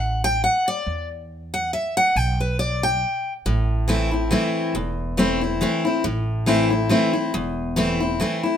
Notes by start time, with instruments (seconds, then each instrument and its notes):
Already playing: upright bass A1
0.00 steel-string acoustic guitar F#5
0.24 steel-string acoustic guitar G5
0.44 steel-string acoustic guitar F#5
0.68 steel-string acoustic guitar D5
0.87 upright bass E2
1.54 steel-string acoustic guitar F#5
1.73 steel-string acoustic guitar E5
1.97 steel-string acoustic guitar F#5
2.16 upright bass B1, steel-string acoustic guitar G5
2.40 steel-string acoustic guitar B4
2.59 steel-string acoustic guitar D5
2.83 steel-string acoustic guitar G5
3.46 upright bass A1, steel-string acoustic guitar A2
3.88 steel-string acoustic guitar E3 A3 C4 E4
4.11 steel-string acoustic guitar C4 E4
4.31 steel-string acoustic guitar E3 A3 C4 E4
4.75 upright bass E1, steel-string acoustic guitar E2
5.17 steel-string acoustic guitar E3 A3 C4 E4
5.41 steel-string acoustic guitar C4 E4
5.61 steel-string acoustic guitar E3 A3 C4 E4
5.85 steel-string acoustic guitar C4 E4
6.04 upright bass A1, steel-string acoustic guitar A2
6.46 steel-string acoustic guitar E3 A3 C4 E4
6.70 steel-string acoustic guitar C4 E4
6.89 steel-string acoustic guitar E3 A3 C4 E4
7.13 steel-string acoustic guitar C4 E4
7.34 upright bass E1, steel-string acoustic guitar E2
7.76 steel-string acoustic guitar E3 A3 C4 E4
8.00 steel-string acoustic guitar C4 E4
8.20 steel-string acoustic guitar E3 A3 C4 E4
8.43 steel-string acoustic guitar C4 E4